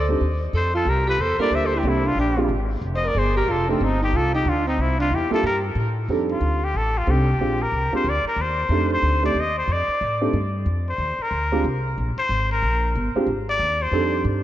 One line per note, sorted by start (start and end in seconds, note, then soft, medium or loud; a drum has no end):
0.00 0.20 D2 medium
0.00 0.10 D5 medium
0.09 0.20 G3 medium
0.09 0.20 C4 medium
0.09 0.20 D4 medium
0.09 0.21 D#4 medium
0.09 0.21 A4 medium
0.21 0.53 D#2 medium
0.53 0.85 F2 medium
0.53 0.73 A4 medium
0.53 0.74 C5 medium
0.74 0.90 F4 medium
0.74 0.91 A4 medium
0.85 1.18 C2 medium
0.85 1.06 G4 medium
0.90 1.08 A#4 medium
1.07 1.22 G4 medium
1.07 1.23 B4 medium
1.19 1.38 E2 medium
1.19 1.39 A4 medium
1.19 1.41 C5 medium
1.38 1.82 G3 medium
1.38 1.82 A#3 medium
1.38 1.82 D4 soft
1.38 1.83 E4 medium
1.38 1.83 A4 medium
1.38 1.55 A#4 medium
1.38 1.57 D5 medium
1.38 muted upright bass stroke soft
1.51 1.82 D2 medium
1.51 1.66 C5 medium
1.55 1.68 E5 medium
1.65 1.77 A4 medium
1.65 1.80 C5 medium
1.75 1.87 E4 medium
1.75 1.90 G4 medium
1.83 2.15 C2 medium
1.83 2.03 G3 medium
1.83 2.03 A#3 soft
1.83 2.07 C4 medium
1.83 2.03 D4 soft
1.83 2.03 E4 soft
1.83 2.03 A4 medium
1.89 2.09 E4 medium
2.05 2.18 D4 medium
2.05 2.19 F4 medium
2.16 2.48 A#1 medium
2.16 2.49 D4 medium
2.20 2.49 G4 medium
2.37 2.49 G#3 medium
2.37 2.49 C4 medium
2.37 2.49 D4 medium
2.37 2.49 F4 medium
2.37 2.49 G4 medium
2.49 2.81 G#1 medium
2.81 3.14 F1 medium
2.95 3.07 C5 medium
2.95 3.09 D#5 medium
3.05 3.18 A#4 medium
3.05 3.20 D5 medium
3.15 3.47 G1 medium
3.15 3.36 G#4 medium
3.15 3.37 C5 medium
3.37 3.51 G4 medium
3.37 3.53 A#4 medium
3.48 3.80 F1 medium
3.48 3.69 F4 medium
3.48 3.70 A4 medium
3.69 3.80 A3 medium
3.69 3.83 A3 medium
3.69 3.80 C4 medium
3.69 3.85 C4 medium
3.69 3.80 D4 medium
3.69 3.80 D#4 medium
3.69 3.80 G4 medium
3.80 4.12 G1 medium
3.80 4.01 C4 medium
3.80 4.02 D#4 medium
4.02 4.17 D#4 medium
4.02 4.18 G4 medium
4.13 4.44 C2 medium
4.13 4.34 F4 medium
4.13 4.35 A4 medium
4.35 4.49 D#4 medium
4.35 4.51 G4 medium
4.45 4.77 D2 medium
4.45 4.66 D4 medium
4.49 4.68 F4 medium
4.67 4.80 C4 medium
4.67 4.83 D#4 medium
4.78 5.10 C2 medium
4.78 4.98 C4 medium
4.78 5.00 E4 medium
4.99 5.14 D4 medium
4.99 5.17 F4 medium
5.11 5.30 E2 medium
5.11 5.31 E4 medium
5.15 5.33 G4 medium
5.31 5.42 G3 medium
5.31 5.42 A#3 medium
5.31 5.42 D4 medium
5.31 5.43 E4 medium
5.31 5.43 F4 medium
5.31 5.43 A4 medium
5.31 5.45 A4 medium
5.31 muted upright bass stroke soft
5.43 5.75 G2 medium
5.43 5.63 G4 medium
5.43 5.58 A#4 medium
5.75 6.08 A2 medium
6.08 6.40 F2 medium
6.08 6.58 G3 medium
6.08 6.58 C4 medium
6.08 6.58 D4 medium
6.08 6.58 D#4 medium
6.08 6.58 A4 medium
6.32 6.66 F4 medium
6.41 6.73 D2 medium
6.64 6.78 G4 medium
6.74 7.06 A1 medium
6.74 6.99 A4 medium
6.98 7.12 F4 medium
7.07 7.38 C2 medium
7.07 7.25 G3 medium
7.07 7.25 C4 soft
7.07 7.26 D4 soft
7.07 7.26 D#4 soft
7.07 7.64 G4 medium
7.07 7.26 A4 medium
7.39 7.71 A#1 medium
7.39 7.58 G#3 medium
7.39 7.59 C4 medium
7.39 7.59 D4 medium
7.39 7.59 F4 medium
7.39 7.59 G4 medium
7.62 7.94 A#4 medium
7.72 7.91 C2 medium
7.92 8.04 G#3 medium
7.92 8.04 C4 soft
7.92 8.04 D4 medium
7.92 8.04 F4 medium
7.92 8.04 G4 medium
7.92 8.11 C5 medium
7.92 muted upright bass stroke soft
8.04 8.24 D2 medium
8.09 8.27 D5 medium
8.24 8.43 A#4 medium
8.24 muted upright bass stroke soft
8.36 8.68 D#2 medium
8.41 8.93 C5 medium
8.69 9.02 F2 medium
8.69 9.19 A3 medium
8.69 9.20 C4 medium
8.69 9.20 D4 medium
8.69 9.20 D#4 medium
8.69 9.20 G4 medium
8.93 9.23 C5 medium
9.02 9.34 D2 medium
9.23 9.35 A3 medium
9.23 9.35 C4 medium
9.23 9.35 D4 medium
9.23 9.35 D#4 medium
9.23 9.35 G4 medium
9.23 9.41 D5 medium
9.35 9.67 D#2 medium
9.40 9.57 D#5 medium
9.58 9.74 C5 medium
9.68 9.87 F2 medium
9.72 10.23 D5 medium
9.88 muted upright bass stroke soft
10.01 10.33 A2 medium
10.21 10.33 A3 medium
10.21 10.33 C4 medium
10.21 10.33 D4 medium
10.21 10.33 D#4 medium
10.21 10.33 G4 medium
10.33 10.65 G2 medium
10.66 10.98 F2 medium
10.89 11.24 C5 medium
10.98 11.17 D#2 medium
11.19 11.66 A#4 medium
11.19 muted upright bass stroke soft
11.31 11.63 D2 medium
11.52 11.64 G#3 medium
11.52 11.64 C4 medium
11.52 11.64 D4 medium
11.52 11.64 F4 medium
11.52 11.64 G4 medium
11.64 11.96 C2 medium
11.98 12.16 A#1 medium
12.17 12.49 C5 loud
12.17 muted upright bass stroke soft
12.29 12.61 G#1 medium
12.52 12.93 A#4 medium
12.62 12.94 A#1 medium
12.95 13.14 G1 medium
13.15 13.27 G#3 medium
13.15 13.27 C4 medium
13.15 13.27 D4 medium
13.15 13.27 F4 medium
13.15 13.27 G4 medium
13.15 muted upright bass stroke soft
13.27 13.59 G#1 medium
13.49 13.84 D5 loud
13.59 13.91 D#2 medium
13.82 14.27 C5 medium
13.92 14.24 F2 medium
13.92 14.42 G3 medium
13.92 14.42 C4 medium
13.92 14.42 D4 medium
13.92 14.42 D#4 medium
13.92 14.42 A4 medium
14.24 14.43 G2 medium